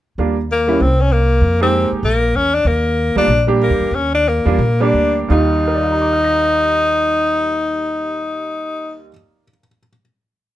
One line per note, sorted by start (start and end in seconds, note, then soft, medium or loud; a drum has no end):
0.18 0.77 D#2 medium
0.18 0.36 G3 soft
0.18 0.36 A#3 soft
0.18 0.36 D4 soft
0.18 0.36 F4 soft
0.52 0.83 A#3 medium
0.67 0.78 G3 medium
0.67 0.78 A#3 soft
0.67 0.79 C#4 medium
0.67 0.79 E4 medium
0.80 1.39 C2 medium
0.80 1.02 C4 medium
1.01 1.14 C#4 medium
1.12 1.62 A#3 medium
1.41 1.88 F2 medium
1.61 2.01 G#3 medium
1.61 2.01 A#3 soft
1.61 1.91 C4 medium
1.61 2.01 D#4 medium
1.61 2.02 G4 medium
1.92 muted upright bass stroke soft
2.03 2.32 A#1 medium
2.03 2.37 A#3 medium
2.34 2.63 E2 medium
2.34 2.56 C#4 medium
2.54 2.69 D4 medium
2.65 3.12 D#2 medium
2.65 3.17 A#3 medium
3.16 3.27 D2 medium
3.16 3.27 G3 medium
3.16 3.27 A#3 medium
3.16 3.27 D4 medium
3.16 3.47 D4 medium
3.16 3.27 F4 medium
3.27 3.67 A#1 medium
3.47 3.89 G3 medium
3.47 3.90 A#3 medium
3.47 3.90 D4 medium
3.47 3.90 G4 medium
3.63 3.96 A#3 medium
3.70 3.79 D#2 medium
3.80 3.90 E2 medium
3.91 4.42 D#2 medium
3.91 4.14 C#4 medium
4.14 4.30 D4 medium
4.28 4.83 A#3 medium
4.45 4.58 E2 medium
4.45 4.57 G3 medium
4.45 4.58 A#3 medium
4.45 4.58 D4 medium
4.45 4.58 F4 medium
4.58 4.91 A#2 medium
4.80 5.27 G3 medium
4.80 5.28 A#3 medium
4.80 5.28 D4 medium
4.80 5.17 D4 medium
4.80 5.28 G4 medium
4.93 5.27 D2 medium
5.28 9.08 D#2 medium
5.28 9.06 D#2 medium
5.28 9.09 D#3 soft
5.28 9.10 G3 medium
5.28 9.11 D#4 medium
5.28 9.01 D#4 medium
5.28 9.11 F4 medium
5.67 9.43 A#4 soft
5.74 9.50 D5 soft
5.83 9.59 F5 soft
5.92 9.68 A#5 soft
6.02 9.77 D6 soft
6.13 9.88 F6 soft
6.24 9.99 A#6 soft